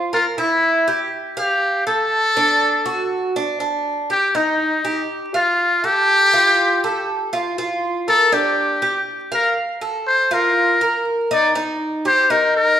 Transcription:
Already playing: F4
0.13 F4 A#4
0.38 E4
0.88 G4
1.37 G4 F5
1.87 A4
2.37 D4
2.86 F#4
3.36 D4
3.60 D4
4.10 G4
4.35 D#4
4.85 G4
5.34 F4 F5
5.84 G4 A4
6.33 F4
6.84 A4
7.33 F4
7.58 F4
8.08 A4 A#4
8.32 D4 G4
8.82 G4
9.32 A#4 F5
9.81 A4
10.07 C5
10.31 F4 A#4
10.81 A#4
11.31 D#4 D5
11.55 D#4
12.05 G4 C5
12.30 D#4 A#4
12.56 A#4

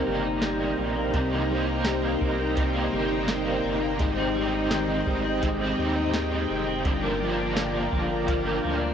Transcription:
Already playing: C3 G3 A#3 D#4 G4 C5 G5 A#5
0.07 G1 G3
0.25 D#4
0.42 G3, snare, closed hi-hat
0.60 A#3
0.78 A#1 G3
0.96 A#3
1.14 C2 C3 G3 A#3 D#4 G4, kick, closed hi-hat
1.32 A#3
1.49 G3 A#3 D#4 G4
1.67 D#4
1.85 G3, snare, closed hi-hat
2.03 A#3
2.21 C2 G3, kick
2.38 A#3
2.55 C3 G3 A#3, kick, closed hi-hat
2.60 D#4 G4
2.74 A#3
2.92 G1 G3
3.10 D#4
3.28 G3, snare, closed hi-hat
3.46 A#3
3.64 G1 G3
3.82 A#3
3.99 G#1 G#2 G#3 C4 D#4 G4 D#5, kick, closed hi-hat
4.17 C4
4.35 G3 C4 D#4 G4
4.52 D#4
4.71 D#3, snare, closed hi-hat
4.88 C4
5.06 G#1 G3, kick
5.23 C4
5.41 G#2 G#3 C4, kick, closed hi-hat
5.46 D#4 G4
5.59 C4
5.77 D#2 G3
5.95 D#4
6.12 D#3, snare, closed hi-hat
6.31 C4
6.48 F1 G3
6.67 C4
6.85 G1 G2 D3 F3 A#3 D4 F4 G4 D5 A#5, kick, closed hi-hat
7.03 A#3
7.20 F3 A#3 D4 G4
7.39 D4
7.56 D3, snare, closed hi-hat
7.74 A#3
7.92 G1 F3, kick
8.10 A#3
8.26 G2 F3 A#3, kick, closed hi-hat
8.32 D4 G4
8.46 A#3
8.64 D2 F3
8.81 D4

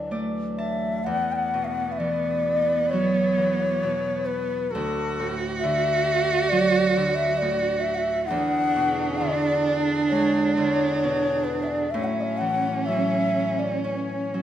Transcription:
Already playing: D2 D3 E3 F#3 D4
0.11 A3 D5
0.58 E5 A5
1.05 E2 B3 F#5
1.32 F#5 G5
1.54 B2
1.65 E5 F#5
1.92 E5
1.98 E3 D5
2.90 F#3 C#5
3.38 E3
3.83 B2
4.26 B4
4.71 D2 F#4 A4
5.20 A2
5.59 E5
5.64 D3
6.44 E5
6.49 F#3 D5
6.96 D3
7.15 E5
7.38 A2 D5
7.80 E5
7.95 E5 F#5
8.11 E5
8.25 E2 D3 D4 G#4 F#5
8.30 E2
8.76 B2
9.18 D3 D5
10.09 G#3 C#5
10.53 C#5 D5
10.57 D3
10.99 C#5
11.04 B2
11.44 B4
11.63 E5
11.68 D5
11.90 A2 F#3 C#4 E5
12.04 E5 F#5
12.21 D5 E5
12.38 E3 F#5
12.86 F#3 E5
13.59 D5
13.83 E3 C#4 C#5
14.34 F#3

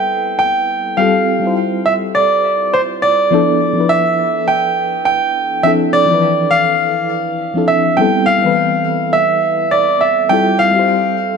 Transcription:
Already playing: G3 B3 C4 E4 A4 B4 G5
0.39 G5
0.97 G3 C4 F4 G4 A4 F5
1.40 G3 C4 E4
1.45 F4 C5
1.86 E5
2.15 D5
2.74 C5
3.02 D5
3.31 F3 B3 D4 E4 A4
3.73 F3 B3 D4
3.79 E4 B4
3.89 E5
4.48 G5
5.05 G5
5.63 F3 C4 D4 E4 A4 E5
5.93 D5
6.06 F3 C4 D4
6.11 E3 B4
6.51 F5
7.54 F3 C4 D4 E4 A4
7.68 E5
7.97 G3 B3 C4 E4 A4 G5
8.26 F5
8.39 G3 B3 C4
8.44 E3 B4
9.13 E5
9.71 D5
10.01 E5
10.29 G3 C4 E4 F4 A4 G5
10.59 F5
10.71 G3 C4 G4
10.77 F4 C5

